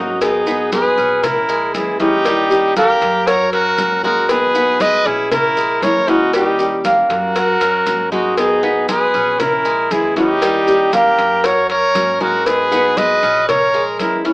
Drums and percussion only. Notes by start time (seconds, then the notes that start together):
0.21 cowbell, high conga, maracas
0.47 high conga, maracas
0.72 cowbell, high conga, maracas
0.98 high conga, maracas
1.23 cowbell, high conga, low conga, maracas
1.49 high conga, maracas
1.75 cowbell, high conga, maracas
2.00 cowbell, high conga, maracas
2.25 cowbell, high conga, maracas
2.51 high conga, maracas
2.76 cowbell, high conga, maracas
3.02 cowbell, high conga, maracas
3.27 cowbell, high conga, maracas
3.53 cowbell, high conga
3.78 cowbell, high conga, maracas
4.04 high conga, maracas
4.29 cowbell, high conga, maracas
4.55 high conga, maracas
4.80 cowbell, high conga, maracas
5.06 high conga, maracas
5.31 cowbell, high conga, low conga, maracas
5.57 high conga, maracas
5.83 cowbell, high conga, maracas
6.08 cowbell, maracas
6.34 cowbell, high conga, maracas
6.59 high conga, maracas
6.85 cowbell, high conga, maracas
7.10 cowbell, high conga, maracas
7.36 cowbell, high conga, maracas
7.61 cowbell, high conga, maracas
7.86 cowbell, high conga, maracas
8.12 high conga, maracas
8.37 cowbell, high conga, maracas
8.64 high conga
8.89 cowbell, high conga, maracas
9.14 high conga, maracas
9.40 cowbell, high conga, low conga, maracas
9.65 high conga, maracas
9.91 cowbell, high conga, maracas
10.16 cowbell, high conga, maracas
10.42 cowbell, high conga, maracas
10.68 high conga, maracas
10.93 cowbell, high conga, maracas
11.19 cowbell, high conga, maracas
11.44 cowbell, high conga, maracas
11.70 cowbell, high conga
11.95 cowbell, high conga, maracas
12.21 high conga, maracas
12.46 cowbell, high conga, maracas
12.72 high conga, maracas
12.97 cowbell, high conga, maracas
13.23 high conga, maracas
13.48 cowbell, high conga, low conga, maracas
13.74 high conga
13.99 cowbell, high conga, maracas
14.25 cowbell, maracas